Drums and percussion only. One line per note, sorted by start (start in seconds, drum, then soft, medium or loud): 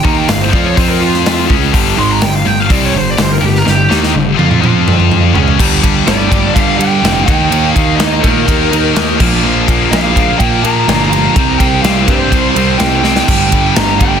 0.05 kick loud
0.29 snare loud
0.29 open hi-hat medium
0.53 kick loud
0.77 kick loud
0.77 open hi-hat medium
1.14 snare soft
1.26 snare loud
1.26 open hi-hat medium
1.50 kick medium
1.74 kick loud
1.74 open hi-hat medium
2.22 snare loud
2.22 open hi-hat medium
2.70 kick loud
2.70 open hi-hat medium
3.18 snare loud
3.18 open hi-hat medium
3.56 snare soft
3.67 snare medium
3.91 snare medium
4.03 snare medium
4.15 high tom medium
4.39 high tom medium
4.51 mid tom medium
4.64 mid tom loud
4.88 mid tom loud
5.00 mid tom medium
5.12 mid tom medium
5.35 floor tom loud
5.48 floor tom medium
5.60 kick loud
5.60 crash loud
5.83 kick medium
5.83 ride medium
6.07 snare loud
6.07 ride loud
6.32 kick medium
6.32 ride medium
6.56 kick loud
6.56 ride loud
6.81 ride medium
7.05 snare loud
7.05 ride medium
7.28 kick loud
7.28 ride medium
7.52 ride loud
7.76 kick loud
7.76 ride medium
8.00 snare loud
8.00 ride medium
8.24 kick medium
8.24 ride medium
8.48 kick medium
8.48 ride loud
8.73 ride medium
8.96 snare loud
8.96 ride loud
9.20 kick loud
9.20 crash loud
9.68 kick loud
9.68 ride medium
9.93 snare loud
9.93 ride loud
10.16 kick medium
10.16 ride medium
10.40 kick medium
10.40 ride loud
10.65 ride medium
10.89 snare loud
10.89 ride medium
11.13 ride medium
11.36 kick loud
11.36 ride loud
11.60 kick loud
11.60 ride medium
11.84 snare loud
11.84 ride loud
12.08 kick loud
12.08 ride medium
12.32 kick medium
12.32 ride loud
12.56 ride medium
12.80 snare loud
12.80 ride loud
13.04 snare medium
13.16 snare loud
13.28 kick loud
13.28 splash medium
13.28 crash loud
13.52 kick medium
13.52 ride medium
13.76 snare loud
13.76 ride loud
14.01 kick medium
14.01 ride medium